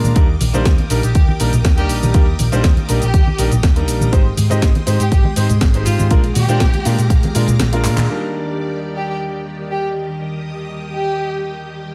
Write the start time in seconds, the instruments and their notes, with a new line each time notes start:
Already playing: string machine G#3 F5 A#5 D6, grand piano G#3 A#3 D4 F4 A#4
0.04 picked electric bass A#2, high conga, cabasa
0.15 picked electric bass D#2, grand piano G3 A#3 D4 D#4 A#4, string machine A#4 G5 D#6, kick, closed hi-hat, cabasa
0.41 picked electric bass A#1, open hi-hat, high conga, cabasa
0.53 picked electric bass A#1, grand piano G3 A#3 D4 D#4 C5, closed hi-hat, cabasa
0.65 picked electric bass D#2, kick, snare, closed hi-hat, cabasa
0.78 closed hi-hat, high conga, cabasa
0.90 picked electric bass A#1, grand piano G3 A#3 D4 D#4 A#4, open hi-hat, cabasa
1.03 picked electric bass A#1, violin section G4, closed hi-hat, cabasa
1.15 picked electric bass D#2, violin section G4, kick, closed hi-hat, cabasa
1.28 high conga
1.39 picked electric bass A#1, grand piano G3 A#3 D4 D#4 A#4, open hi-hat, cabasa
1.53 picked electric bass A#1, closed hi-hat, low conga, cabasa
1.65 picked electric bass D#2, kick, snare, closed hi-hat, high conga, cabasa
1.77 grand piano G3 A#3 D4 D#4 A#4, violin section G4, closed hi-hat, cabasa
1.89 picked electric bass A#1, open hi-hat, cabasa
2.03 picked electric bass A#1, high conga, cabasa
2.14 picked electric bass D#2, grand piano G3 A#3 D4 D#4 A#4, kick, closed hi-hat, cabasa
2.39 picked electric bass A#1, open hi-hat, high conga, cabasa
2.52 picked electric bass A#1, grand piano G3 A#3 D4 D#4 C5, closed hi-hat, cabasa
2.64 picked electric bass D#2, kick, snare, closed hi-hat, cabasa
2.77 closed hi-hat, high conga, cabasa
2.88 picked electric bass A#1, grand piano G3 A#3 D4 D#4 A#4, open hi-hat, cabasa
3.02 picked electric bass A#1, violin section G4, closed hi-hat, cabasa
3.14 picked electric bass D#2, kick, closed hi-hat, cabasa
3.27 high conga
3.38 picked electric bass A#1, grand piano G3 A#3 D4 D#4 A#4, open hi-hat, cabasa
3.51 picked electric bass A#1, closed hi-hat, low conga, cabasa
3.63 picked electric bass D#2, kick, snare, closed hi-hat, high conga, cabasa
3.75 grand piano G3 A#3 D4 D#4 A#4, closed hi-hat, cabasa
3.88 picked electric bass A#1, open hi-hat, cabasa
4.00 picked electric bass A#1, high conga, cabasa
4.12 picked electric bass G#1, grand piano G#3 C4 D#4 G4 C5, string machine G#3 C6 D#6, kick, closed hi-hat, cabasa
4.37 picked electric bass G#2, open hi-hat, high conga, cabasa
4.50 picked electric bass G#2, grand piano G#3 C4 D#4 G4 D#5, closed hi-hat, cabasa
4.62 picked electric bass G#1, kick, snare, closed hi-hat, cabasa
4.75 closed hi-hat, high conga, cabasa
4.86 picked electric bass G#2, grand piano G#3 C4 D#4 G4 C5, open hi-hat, cabasa
5.00 picked electric bass G#2, violin section G4, closed hi-hat, cabasa
5.12 picked electric bass G#1, violin section G4, kick, closed hi-hat, cabasa
5.24 high conga
5.36 picked electric bass G#2, grand piano G#3 C4 D#4 G4 C5, open hi-hat, cabasa
5.49 picked electric bass G#2, closed hi-hat, low conga, cabasa
5.61 picked electric bass G#1, kick, snare, closed hi-hat, high conga, cabasa
5.74 grand piano G#3 C4 D#4 G4 C5, closed hi-hat, cabasa
5.85 picked electric bass G#2, violin section F4, open hi-hat, cabasa
5.99 picked electric bass G#2, high conga, cabasa
6.11 picked electric bass A#1, grand piano G#3 A#3 D4 F4 A#4, string machine F5 A#5 D6, kick, closed hi-hat, cabasa
6.24 closed hi-hat
6.35 picked electric bass A#2, violin section G4, open hi-hat, high conga, cabasa
6.48 picked electric bass A#2, grand piano G#3 A#3 D4 F4 C5, closed hi-hat, cabasa
6.60 picked electric bass A#1, kick, snare, closed hi-hat, cabasa
6.73 closed hi-hat, high conga, cabasa
6.85 picked electric bass A#2, grand piano G#3 A#3 D4 F4 A#4, open hi-hat, cabasa
6.99 picked electric bass A#2, closed hi-hat, cabasa
7.10 picked electric bass A#1, kick, closed hi-hat, cabasa
7.23 closed hi-hat, high conga, cabasa
7.34 picked electric bass A#2, grand piano G#3 A#3 D4 F4 A#4, open hi-hat, cabasa
7.48 picked electric bass A#2, closed hi-hat, low conga, cabasa
7.59 picked electric bass A#1, snare, closed hi-hat, high conga, cabasa
7.72 grand piano G#3 A#3 D4 F4 A#4, closed hi-hat, cabasa
7.84 picked electric bass A#2, clap, open hi-hat, cabasa
7.97 picked electric bass A#2, clap, closed hi-hat, high conga, cabasa
8.08 string machine D#3 G4 D5, grand piano G3 A#3 D4 D#4 A#4
8.97 violin section G4
9.09 violin section G4
9.72 violin section G4
10.09 string machine D#6
10.94 violin section G4